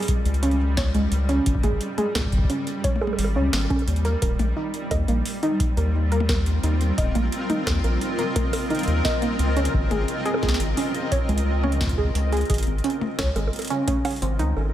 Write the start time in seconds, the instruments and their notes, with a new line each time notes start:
Already playing: ambient pad G3 C4 F4 A#4 D#5
0.03 open hi-hat
0.08 kick, closed hi-hat
0.25 analog synth bass C#2, closed hi-hat
0.34 closed hi-hat
0.43 synth pluck C#4, closed hi-hat
0.51 closed hi-hat
0.77 synth pluck C#5, kick, snare
0.94 synth pluck G#3, closed hi-hat
1.12 analog synth bass C#2, closed hi-hat
1.29 synth pluck C#4, closed hi-hat
1.46 analog synth bass G#1, kick, closed hi-hat
1.55 kick
1.63 analog synth bass G#1, synth pluck G#4, kick, closed hi-hat, high tom
1.72 kick
1.81 closed hi-hat
1.98 synth pluck G#4, closed hi-hat, high tom
2.15 analog synth bass C#2, kick, snare, closed hi-hat, high bongo
2.21 kick
2.27 kick
2.32 analog synth bass G#1, kick, closed hi-hat
2.38 kick
2.44 kick
2.50 synth pluck C#4, closed hi-hat
2.67 closed hi-hat
2.84 synth pluck C#5, kick, closed hi-hat, high tom
2.96 high tom
3.01 synth pluck G#4, high bongo
3.07 high tom
3.13 high bongo
3.19 analog synth bass G#1, closed hi-hat, open hi-hat
3.24 high bongo
3.36 analog synth bass C#2, synth pluck C#4
3.53 analog synth bass G#1, snare, open hi-hat, high bongo
3.59 high bongo
3.65 high bongo
3.70 synth pluck C#4, kick, closed hi-hat, high bongo
3.76 closed hi-hat, high bongo
3.82 high bongo
3.88 analog synth bass D#2, closed hi-hat
3.96 closed hi-hat
4.05 synth pluck A#4, closed hi-hat
4.22 analog synth bass D#1, synth pluck A#4, kick, closed hi-hat
4.32 ambient pad C4
4.39 analog synth bass A#1, closed hi-hat, high tom
4.57 synth pluck D#4
4.74 closed hi-hat
4.80 ambient pad F4
4.90 analog synth bass D#2, ambient pad A#4, synth pluck D#5, kick, closed hi-hat, high bongo
5.08 analog synth bass A#1, synth pluck A#3, closed hi-hat
5.26 open hi-hat
5.43 synth pluck D#4, closed hi-hat
5.60 kick, closed hi-hat
5.77 analog synth bass D#2, synth pluck A#4, closed hi-hat
6.12 synth pluck A#4, closed hi-hat
6.20 high tom
6.29 synth pluck A#4, kick, snare
6.36 ambient pad D#5
6.46 closed hi-hat
6.63 analog synth bass D#2, synth pluck D#4, closed hi-hat
6.81 closed hi-hat
6.98 analog synth bass D#1, synth pluck D#5, kick, closed hi-hat
7.15 analog synth bass A#1, synth pluck A#3, closed hi-hat, high tom
7.32 closed hi-hat
7.50 synth pluck D#4, closed hi-hat, high tom
7.67 analog synth bass D#2, kick, snare, closed hi-hat, high bongo
7.84 analog synth bass A#1, synth pluck A#4, closed hi-hat
8.01 closed hi-hat
8.19 synth pluck A#4, closed hi-hat
8.36 synth pluck A#4, kick, closed hi-hat, high tom
8.53 open hi-hat, high bongo
8.70 synth pluck D#4, closed hi-hat
8.75 closed hi-hat
8.79 closed hi-hat
8.83 closed hi-hat
8.88 analog synth bass D#2, closed hi-hat
9.05 synth pluck D#5, kick, snare, high bongo
9.22 synth pluck A#3, closed hi-hat
9.39 analog synth bass C#2, closed hi-hat
9.57 synth pluck C#4, closed hi-hat
9.65 closed hi-hat
9.74 analog synth bass G#1, kick
9.91 analog synth bass G#1, synth pluck G#4, closed hi-hat, high tom
10.08 closed hi-hat
10.26 synth pluck G#4, closed hi-hat
10.34 high bongo
10.43 analog synth bass C#2, synth pluck G#4, kick, snare
10.48 snare
10.54 snare
10.60 analog synth bass G#1, closed hi-hat
10.77 synth pluck C#4, open hi-hat
10.95 closed hi-hat
11.12 synth pluck C#5, kick, closed hi-hat
11.29 analog synth bass C#2, synth pluck G#3, closed hi-hat
11.38 closed hi-hat
11.63 synth pluck C#4, high tom
11.72 closed hi-hat
11.81 kick, snare
11.86 kick, closed hi-hat
11.92 kick
11.98 synth pluck G#4, kick
12.04 kick
12.09 kick
12.15 analog synth bass C#2, closed hi-hat
12.32 synth pluck G#4, closed hi-hat
12.37 closed hi-hat
12.41 closed hi-hat
12.45 closed hi-hat
12.50 analog synth bass G#1, synth pluck G#4, kick, closed hi-hat
12.54 closed hi-hat
12.58 closed hi-hat
12.63 closed hi-hat
12.67 analog synth bass G#1, closed hi-hat
12.78 closed hi-hat
12.84 synth pluck C#4, closed hi-hat
12.90 closed hi-hat
13.01 high tom
13.19 analog synth bass C#2, synth pluck C#5, kick, snare, closed hi-hat, high bongo
13.36 analog synth bass G#1, synth pluck G#3, closed hi-hat, high bongo
13.47 high bongo
13.53 closed hi-hat
13.56 closed hi-hat
13.59 closed hi-hat, high bongo
13.62 closed hi-hat
13.65 closed hi-hat
13.67 synth pluck C#4, closed hi-hat
13.70 closed hi-hat
13.88 synth pluck C#4, kick, closed hi-hat, high tom
14.05 synth pluck C#4, open hi-hat, high bongo
14.11 open hi-hat
14.16 open hi-hat
14.22 analog synth bass G#1, synth pluck C4, closed hi-hat
14.39 analog synth bass C#2, synth pluck D#4, closed hi-hat
14.57 analog synth bass G#1, high bongo
14.61 high bongo
14.65 high bongo
14.70 high bongo